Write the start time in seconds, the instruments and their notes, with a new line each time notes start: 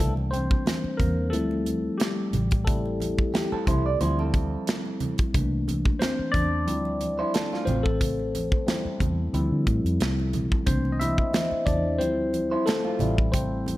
Already playing: tine electric piano A4
0.00 fingered electric bass C2, tine electric piano E3 G3 A3 A#3 D4, muted conga, low conga
0.17 muted conga
0.31 tine electric piano C4 C5, closed hi-hat, high conga
0.51 kick
0.66 snare, closed hi-hat, muted conga, high conga
0.84 muted fingered electric bass stroke, muted conga
0.97 fingered electric bass E2, tine electric piano A#3 A#4, kick, closed hi-hat, high conga, low conga
1.30 fingered electric bass D2, tine electric piano F3 G3 A3 C4 E4 A4, closed hi-hat, high conga
1.51 muted conga
1.66 closed hi-hat, high conga
1.98 tine electric piano G3 G4, snare, closed hi-hat
2.33 fingered electric bass A1, closed hi-hat, high conga, low conga
2.51 kick, closed hi-hat
2.65 tine electric piano G3 A3 C4 E4 A4, kick, closed hi-hat, low conga
2.85 muted conga
3.00 closed hi-hat, high conga
3.19 kick
3.34 clean electric guitar G4, snare, closed hi-hat, high conga
3.52 clean electric guitar C4 A4, muted fingered electric bass stroke, muted conga
3.67 fingered electric bass C2, clean electric guitar E4 C5, kick, closed hi-hat, high conga, low conga
3.86 clean electric guitar D5
4.00 fingered electric bass D2, tine electric piano F3 G3 C4 E4, clean electric guitar E4 C5, closed hi-hat, muted conga, high conga
4.19 clean electric guitar C4 A4, muted conga
4.34 kick, closed hi-hat, high conga
4.67 snare, closed hi-hat, muted conga
4.85 muted conga
5.00 closed hi-hat, high conga, low conga
5.18 kick, closed hi-hat
5.34 fingered electric bass C2, tine electric piano E3 A3 A#3 D4, kick, closed hi-hat, muted conga, low conga
5.68 closed hi-hat, high conga
5.85 kick
5.99 tine electric piano C4 C5, snare, closed hi-hat, muted conga, high conga
6.19 muted fingered electric bass stroke
6.32 fingered electric bass E2, tine electric piano D4 D5, kick, closed hi-hat, high conga, low conga
6.66 fingered electric bass D2, tine electric piano F3 G3 C4 E4, closed hi-hat, muted conga, high conga
6.85 muted conga
7.01 closed hi-hat, high conga
7.19 clean electric guitar E4 C5
7.34 clean electric guitar C4 A4, snare, closed hi-hat, muted conga
7.52 clean electric guitar A3 F4, snare, muted conga
7.65 fingered electric bass A1, tine electric piano C4 C5, closed hi-hat, high conga, low conga
7.83 tine electric piano A3 A4, kick
8.01 kick, closed hi-hat, muted conga, low conga
8.19 muted conga
8.35 closed hi-hat, high conga
8.52 kick
8.66 tine electric piano G3 C4 E4, snare, closed hi-hat, high conga
8.85 muted fingered electric bass stroke, muted conga
9.00 fingered electric bass E2, kick, closed hi-hat, high conga, low conga
9.33 fingered electric bass D2, tine electric piano F3 G3 C4 E4, closed hi-hat, muted conga, high conga
9.52 fingered electric bass D3
9.67 fingered electric bass A2, kick, closed hi-hat, high conga
9.85 fingered electric bass F2, closed hi-hat
10.00 fingered electric bass C2, snare, closed hi-hat, muted conga
10.20 muted conga
10.33 fingered electric bass B1, closed hi-hat, high conga, low conga
10.52 kick
10.66 fingered electric bass C2, tine electric piano E3 A3 A#3 C4 D4 C5, kick, closed hi-hat, muted conga, low conga
10.85 muted conga
10.92 tine electric piano D#5
10.99 tine electric piano E4 E5, closed hi-hat, high conga
11.18 kick
11.34 snare, closed hi-hat, muted conga, high conga
11.51 muted fingered electric bass stroke, muted conga
11.66 fingered electric bass E2, tine electric piano D4 D5, kick, closed hi-hat, high conga, low conga
11.98 fingered electric bass D2, tine electric piano F3 G3 C4 E4 C5, closed hi-hat, high conga
12.33 closed hi-hat, high conga
12.51 clean electric guitar E4 C5
12.66 tine electric piano A3 A4, clean electric guitar C4 A4, snare, closed hi-hat, muted conga
12.84 clean electric guitar A3 F4, muted conga
12.99 fingered electric bass A1, tine electric piano G3 C4 E4, closed hi-hat, high conga, low conga
13.18 kick
13.32 tine electric piano C4 C5, kick, closed hi-hat, muted conga, low conga
13.66 closed hi-hat, high conga